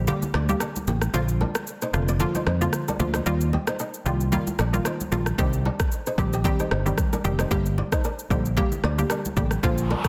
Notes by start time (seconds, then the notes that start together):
Already playing: A#1
0.07 D3 G3 A#3 G4, low conga, shaker
0.22 high conga, shaker
0.34 D2 F4 D5, cross-stick
0.49 D3 G3 A#3 G4, high conga, shaker
0.60 D4 A#4, cross-stick, shaker
0.76 high conga, shaker
0.87 A1 A#3 G4, low conga, shaker
1.02 cross-stick, high conga, shaker
1.14 A#1 D3 F3 A#3 F4 C5, shaker
1.28 shaker
1.41 D4 A#4, high conga
1.55 cross-stick, shaker
1.67 shaker
1.82 D#4 C5, shaker
1.93 F1 D3 F3 A#3 F4, cross-stick, shaker
2.08 F4 D5, shaker
2.20 D3 F3 A#3 F4, low conga, shaker
2.35 D#4 C5, high conga, shaker
2.47 F2 D#4 C5, cross-stick
2.61 D3 F3 A#3 F4, high conga, shaker
2.73 cross-stick, shaker
2.88 D4 A#4, high conga, shaker
2.99 D2 D3 F3 A#3 F4, low conga, shaker
3.14 D#4 C5, cross-stick, high conga, shaker
3.26 D#2 D#3 G3 A#3 F4, shaker
3.41 shaker
3.53 G4 D#5, high conga
3.67 D#4 C5, cross-stick, shaker
3.79 D#4 A#4, shaker
3.94 shaker
4.06 C2 D#3 G3 A#3 F4 G4, shaker
4.21 shaker
4.32 D#3 G3 A#3 F4, low conga, shaker
4.47 high conga, shaker
4.59 A#1 D4 A#4, cross-stick, shaker
4.73 D#3 G3 A#3 F4, high conga, shaker
4.85 D#4 C5, cross-stick, shaker
5.00 high conga, shaker
5.12 A#1 D#3 G3 A#3 D4 F4 A#4, low conga, shaker
5.26 cross-stick, high conga, shaker
5.38 C2 D#3 G3 C4 D#4 G4 C5, kick, shaker
5.53 shaker
5.65 D4 A#4, high conga
5.80 kick, cross-stick, shaker
5.92 shaker
6.06 D#4 C5, shaker
6.18 A#1 D#3 G3 C4 G4, kick, cross-stick, shaker
6.33 G4 D#5, shaker
6.44 D#3 G3 C4 G4, kick, low conga, shaker
6.59 D#4 C5, high conga, shaker
6.71 G1 D#4 C5, cross-stick
6.86 D#3 G3 C4 G4, high conga, shaker
6.98 kick, cross-stick, shaker
7.13 D4 A#4, high conga, shaker
7.24 F1 D#3 G3 C4 G4, low conga, shaker
7.39 D#4 C5, cross-stick, high conga, shaker
7.51 G1 D3 G3 A#3 G4, kick, shaker
7.66 shaker
7.78 F4 D5, high conga
7.92 D#4 C5, kick, cross-stick, shaker
8.04 D4 A#4, shaker
8.19 shaker
8.30 A#1 D3 G3 A#3 D#4 G4 C5, kick, shaker
8.45 shaker
8.57 D3 G3 A#3 G4, kick, low conga, shaker
8.72 high conga, shaker
8.84 D2 F4 D5, cross-stick
8.98 D3 G3 A#3 G4, high conga, shaker
9.10 D4 A#4, cross-stick, shaker
9.25 high conga, shaker
9.37 A1 D3 G3 A#3 G4, kick, low conga, shaker
9.51 cross-stick, high conga, shaker
9.63 A#1 D3 F3 A#3 F4 C5, kick, noise sweep, shaker
9.78 shaker
9.90 D4 A#4, high conga
10.04 kick, cross-stick, shaker